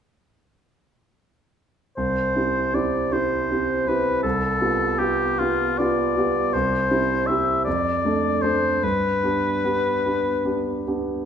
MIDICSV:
0, 0, Header, 1, 3, 480
1, 0, Start_track
1, 0, Key_signature, 0, "major"
1, 0, Tempo, 772201
1, 1226, Time_signature, 6, 3, 24, 8
1, 1707, Tempo, 745342
1, 3147, Tempo, 803213
1, 3627, Tempo, 752823
1, 5067, Tempo, 803213
1, 6984, End_track
2, 0, Start_track
2, 0, Title_t, "Oboe"
2, 0, Program_c, 0, 68
2, 1223, Note_on_c, 0, 72, 50
2, 1707, Note_on_c, 0, 74, 49
2, 1717, Note_off_c, 0, 72, 0
2, 1950, Note_on_c, 0, 72, 53
2, 1960, Note_off_c, 0, 74, 0
2, 2436, Note_on_c, 0, 71, 59
2, 2446, Note_off_c, 0, 72, 0
2, 2657, Note_off_c, 0, 71, 0
2, 2661, Note_on_c, 0, 69, 59
2, 3148, Note_on_c, 0, 67, 54
2, 3157, Note_off_c, 0, 69, 0
2, 3388, Note_on_c, 0, 65, 55
2, 3397, Note_off_c, 0, 67, 0
2, 3625, Note_on_c, 0, 74, 53
2, 3634, Note_off_c, 0, 65, 0
2, 4107, Note_on_c, 0, 72, 64
2, 4116, Note_off_c, 0, 74, 0
2, 4572, Note_on_c, 0, 76, 55
2, 4581, Note_off_c, 0, 72, 0
2, 4809, Note_off_c, 0, 76, 0
2, 4813, Note_on_c, 0, 74, 61
2, 5291, Note_on_c, 0, 72, 58
2, 5300, Note_off_c, 0, 74, 0
2, 5538, Note_on_c, 0, 71, 51
2, 5547, Note_off_c, 0, 72, 0
2, 6748, Note_off_c, 0, 71, 0
2, 6984, End_track
3, 0, Start_track
3, 0, Title_t, "Grand piano"
3, 0, Program_c, 1, 0
3, 1226, Note_on_c, 1, 36, 38
3, 1329, Control_c, 1, 64, 127
3, 1460, Note_off_c, 1, 36, 0
3, 1466, Note_on_c, 1, 60, 25
3, 1467, Note_on_c, 1, 64, 24
3, 1473, Note_on_c, 1, 67, 30
3, 1682, Note_off_c, 1, 60, 0
3, 1683, Note_off_c, 1, 64, 0
3, 1686, Note_off_c, 1, 67, 0
3, 1704, Note_on_c, 1, 60, 30
3, 1704, Note_on_c, 1, 64, 29
3, 1704, Note_on_c, 1, 67, 34
3, 1925, Note_off_c, 1, 60, 0
3, 1925, Note_off_c, 1, 64, 0
3, 1925, Note_off_c, 1, 67, 0
3, 1947, Note_on_c, 1, 60, 26
3, 1948, Note_on_c, 1, 64, 24
3, 1953, Note_on_c, 1, 67, 29
3, 2167, Note_off_c, 1, 60, 0
3, 2167, Note_off_c, 1, 64, 0
3, 2170, Note_off_c, 1, 67, 0
3, 2198, Note_on_c, 1, 60, 30
3, 2200, Note_on_c, 1, 64, 30
3, 2205, Note_on_c, 1, 67, 33
3, 2411, Note_off_c, 1, 60, 0
3, 2412, Note_off_c, 1, 64, 0
3, 2415, Note_off_c, 1, 67, 0
3, 2434, Note_on_c, 1, 60, 29
3, 2436, Note_on_c, 1, 64, 28
3, 2440, Note_on_c, 1, 67, 32
3, 2645, Note_off_c, 1, 60, 0
3, 2646, Note_off_c, 1, 64, 0
3, 2648, Note_off_c, 1, 67, 0
3, 2668, Note_on_c, 1, 36, 42
3, 2680, Control_c, 1, 64, 0
3, 2767, Control_c, 1, 64, 127
3, 2896, Note_off_c, 1, 36, 0
3, 2908, Note_on_c, 1, 59, 28
3, 2911, Note_on_c, 1, 65, 29
3, 2913, Note_on_c, 1, 67, 34
3, 3126, Note_off_c, 1, 59, 0
3, 3128, Note_off_c, 1, 65, 0
3, 3129, Note_off_c, 1, 67, 0
3, 3152, Note_on_c, 1, 59, 36
3, 3154, Note_on_c, 1, 65, 34
3, 3157, Note_on_c, 1, 67, 38
3, 3367, Note_off_c, 1, 59, 0
3, 3368, Note_off_c, 1, 65, 0
3, 3370, Note_off_c, 1, 67, 0
3, 3398, Note_on_c, 1, 59, 31
3, 3401, Note_on_c, 1, 65, 30
3, 3403, Note_on_c, 1, 67, 33
3, 3609, Note_off_c, 1, 59, 0
3, 3610, Note_off_c, 1, 65, 0
3, 3611, Note_off_c, 1, 67, 0
3, 3636, Note_on_c, 1, 65, 36
3, 3637, Note_on_c, 1, 59, 34
3, 3641, Note_on_c, 1, 67, 38
3, 3850, Note_off_c, 1, 59, 0
3, 3850, Note_off_c, 1, 65, 0
3, 3852, Note_off_c, 1, 67, 0
3, 3872, Note_on_c, 1, 59, 33
3, 3874, Note_on_c, 1, 65, 35
3, 3877, Note_on_c, 1, 67, 40
3, 4082, Note_off_c, 1, 59, 0
3, 4083, Note_off_c, 1, 65, 0
3, 4085, Note_off_c, 1, 67, 0
3, 4113, Control_c, 1, 64, 0
3, 4114, Note_on_c, 1, 36, 42
3, 4227, Control_c, 1, 64, 127
3, 4337, Note_off_c, 1, 36, 0
3, 4340, Note_on_c, 1, 60, 30
3, 4344, Note_on_c, 1, 64, 33
3, 4346, Note_on_c, 1, 67, 32
3, 4556, Note_off_c, 1, 60, 0
3, 4558, Note_off_c, 1, 64, 0
3, 4559, Note_off_c, 1, 67, 0
3, 4590, Note_on_c, 1, 60, 34
3, 4592, Note_on_c, 1, 64, 33
3, 4592, Note_on_c, 1, 67, 35
3, 4803, Note_off_c, 1, 60, 0
3, 4804, Note_off_c, 1, 67, 0
3, 4805, Note_off_c, 1, 64, 0
3, 4830, Note_on_c, 1, 41, 37
3, 4835, Control_c, 1, 64, 0
3, 4946, Control_c, 1, 64, 127
3, 5064, Note_off_c, 1, 41, 0
3, 5071, Note_on_c, 1, 57, 31
3, 5071, Note_on_c, 1, 62, 30
3, 5075, Note_on_c, 1, 69, 36
3, 5279, Note_off_c, 1, 57, 0
3, 5279, Note_off_c, 1, 62, 0
3, 5282, Note_off_c, 1, 69, 0
3, 5300, Note_on_c, 1, 57, 28
3, 5303, Note_on_c, 1, 62, 29
3, 5306, Note_on_c, 1, 69, 32
3, 5514, Note_off_c, 1, 57, 0
3, 5515, Note_off_c, 1, 62, 0
3, 5517, Note_off_c, 1, 69, 0
3, 5537, Note_on_c, 1, 43, 31
3, 5547, Control_c, 1, 64, 0
3, 5674, Control_c, 1, 64, 127
3, 5771, Note_off_c, 1, 43, 0
3, 5778, Note_on_c, 1, 59, 23
3, 5782, Note_on_c, 1, 62, 26
3, 5783, Note_on_c, 1, 67, 24
3, 5997, Note_off_c, 1, 59, 0
3, 5999, Note_off_c, 1, 62, 0
3, 6000, Note_off_c, 1, 67, 0
3, 6022, Note_on_c, 1, 59, 28
3, 6024, Note_on_c, 1, 62, 28
3, 6025, Note_on_c, 1, 67, 31
3, 6241, Note_off_c, 1, 59, 0
3, 6242, Note_off_c, 1, 62, 0
3, 6243, Note_off_c, 1, 67, 0
3, 6265, Note_on_c, 1, 59, 23
3, 6269, Note_on_c, 1, 62, 22
3, 6270, Note_on_c, 1, 67, 24
3, 6482, Note_off_c, 1, 59, 0
3, 6484, Note_off_c, 1, 62, 0
3, 6485, Note_off_c, 1, 67, 0
3, 6503, Note_on_c, 1, 59, 29
3, 6506, Note_on_c, 1, 62, 27
3, 6506, Note_on_c, 1, 67, 28
3, 6722, Note_off_c, 1, 59, 0
3, 6724, Note_off_c, 1, 62, 0
3, 6724, Note_off_c, 1, 67, 0
3, 6758, Note_on_c, 1, 59, 26
3, 6759, Note_on_c, 1, 62, 27
3, 6760, Note_on_c, 1, 67, 28
3, 6968, Note_off_c, 1, 59, 0
3, 6969, Note_off_c, 1, 62, 0
3, 6969, Note_off_c, 1, 67, 0
3, 6984, End_track
0, 0, End_of_file